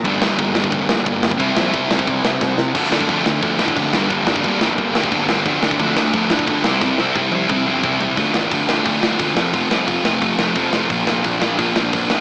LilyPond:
<<
  \new Staff \with { instrumentName = "Distorted electric guitar" } { \time 4/4 \key d \minor \tempo 4 = 177 <g, d g bes d'>1 | <c g c' e'>1 | <d f a d'>8 <d f a d'>8 <d f a d'>8 <d f a d'>8 <d f a d'>8 <d f a d'>8 <d f a d'>8 <g, d g bes d'>8 | <g, d g bes d'>8 <g, d g bes d'>8 <g, d g bes d'>8 <g, d g bes d'>8 <g, d g bes d'>8 <g, d g bes d'>8 <g, d g bes d'>8 <g, d g bes d'>8 |
<d f a d'>8 <d f a d'>8 <d f a d'>8 <d f a d'>8 <d f a d'>8 <d f a d'>8 <d f a d'>8 <c g c' e'>8 | <c g c' e'>8 <c g c' e'>8 <c g c' e'>8 <c g c' e'>8 <c g c' e'>8 <c g c' e'>8 <c g c' e'>8 <c g c' e'>8 | <d a d' f'>8 <d a d' f'>8 <d a d' f'>8 <d a d' f'>8 <d a d' f'>8 <d a d' f'>8 <d a d' f'>8 <f a c' f'>8 | <f a c' f'>8 <f a c' f'>8 <f a c' f'>8 <f a c' f'>8 <f a c' f'>8 <f a c' f'>8 <f a c' f'>8 <f a c' f'>8 |
<bes, f bes d' f'>8 <bes, f bes d' f'>8 <bes, f bes d' f'>8 <bes, f bes d' f'>8 <bes, f bes d' f'>8 <bes, f bes d' f'>8 <bes, f bes d' f'>8 <bes, f bes d' f'>8 | }
  \new Staff \with { instrumentName = "Picked electric bass" } { \clef bass \time 4/4 \key d \minor g,,8 g,,8 g,,4 f,,8 g,,8 g,,4 | c,8 bes,,8 c,8 c,8 c,8 c,8 c,8 c8 | d,8 d,8 d,8 d,8 d,8 a,8 d,8 g,,8 | g,,8 g,,8 g,,8 g,,8 g,,8 d,8 g,,8 g,,8 |
d,8 d,8 d,8 d,8 d,8 a,8 d,8 c,8 | c,8 c,8 c,8 c,8 c,8 g,,8 c,8 c,8 | d,8 a,,8 d,8 d,8 d,8 d,8 d,8 f,,8 | f,,8 c,8 f,,8 f,,8 f,,8 f,,8 f,,8 f,,8 |
bes,,8 f,,8 bes,,8 bes,,8 bes,,8 bes,,8 bes,,8 bes,,8 | }
  \new DrumStaff \with { instrumentName = "Drums" } \drummode { \time 4/4 <bd cymr>8 sn8 <bd cymr>8 sn16 bd16 <bd cymr>8 sn8 <bd cymr>8 sn16 bd16 | <bd cymr>8 sn8 <bd cymr>8 sn16 bd16 <bd cymr>8 sn8 <bd sn>8 sn8 | <cymc bd>8 sn16 bd16 <cymc bd>8 sn8 <cymc bd>8 sn16 bd16 <cymc bd>8 sn8 | <cymc bd>8 sn16 bd16 <cymc bd>8 sn8 <cymc bd>8 sn16 bd16 <cymc bd>8 sn8 |
<cymc bd>8 sn16 bd16 <cymc bd>8 sn8 <cymc bd>8 sn16 bd16 <cymc bd>8 sn8 | <bd sn>8 sn8 bd8 tommh8 <bd toml>4 <bd tomfh>8 tomfh8 | <hho bd>8 sn8 <hho bd>8 sn8 <hho bd>8 sn8 <hho bd>8 sn8 | <hho bd>8 sn8 <hho bd>8 sn8 <hho bd>8 sn8 <hho bd>8 sn8 |
<hho bd>8 sn8 <hho bd>8 sn8 <hho bd>8 sn8 <hho bd>8 sn8 | }
>>